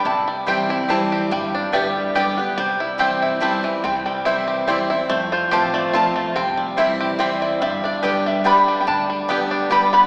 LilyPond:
<<
  \new Staff \with { instrumentName = "Resonator guitar played with a steel bar" } { \time 3/4 \key c \major \tempo 4 = 143 a''4 g''4 a''4 | g''4 e''4 d''8 b'8 | c''2 a''4 | g''8 g''8 e''4 d''4 |
c''8 c''4 d''8 a''4 | g''4 e''4 d''4 | e''8 d''4 e''8 \tuplet 3/2 { b''4~ b''16 g''16 } | a''4 g''4 b''8 b''8 | }
  \new Staff \with { instrumentName = "Mandolin" } { \time 3/4 \key c \major r4 <c' e' c'' g''>8 r8 <c' e' c'' g''>8 r8 | r4 <b g' d'' g''>8 r8 <b g' d'' g''>8 r8 | r4 <c' e' c'' g''>8 r8 <c' e' c'' g''>8 r8 | r4 <c' e' c'' g''>8 r8 <c' e' c'' g''>8 r8 |
r4 <c' f' c'' a''>8 r8 <c' f' c'' a''>8 r8 | r4 <c' e' c'' g''>8 r8 <c' e' c'' g''>8 r8 | r4 <b g' d'' g''>8 r8 <b g' d'' g''>8 r8 | r4 <b g' d'' g''>8 r8 <b g' d'' g''>8 r8 | }
  \new Staff \with { instrumentName = "Five-string banjo" } { \time 3/4 \key c \major e'8 g8 g'8 e'8 g8 g'8 | g8 d'8 g4 g'8 b8 | g8 e'8 g'8 e'8 g8 e8 | c'8 g8 e'8 g'8 c'8 e'8 |
a8 f'8 g'8 a8 f'8 a8 | c'8 g8 e'8 g'8 c'8 e'8 | g8 d'8 g'8 g8 d'8 g8 | d'8 g8 b8 d'8 g'8 b8 | }
  \new Staff \with { instrumentName = "Steel-string acoustic guitar" } { \time 3/4 \key c \major << { r4 <e g c' e'>8 <c' e'>8 <e g c' e'>4 | r4 <d g b g'>4 <d g b g'>8 <b g'>8 | r4 <e g c' e'>4 <e g c' e'>8 <c' e'>8 | r4 <e g c' e'>4 <e g c' e'>8 <c' e'>8 |
r4 <f a c' f'>4 <f a c' f'>4 | r4 <e g c' e'>4 <e g c' e'>4 | r4 <d g b g'>4 <d g b g'>4 | r4 <d g b g'>4 <d g b g'>4 | } \\ { c2 r4 | g,4 r2 | c2 r4 | c2 r4 |
f,2 r4 | c2 r4 | g,2 r4 | d2 r4 | } >> }
  \new Staff \with { instrumentName = "Upright bass" } { \clef bass \time 3/4 \key c \major c,2. | g,,4 g,,2 | c,2. | c,2. |
f,4 a,,4 b,,4 | c,2. | g,,2. | d,2. | }
>>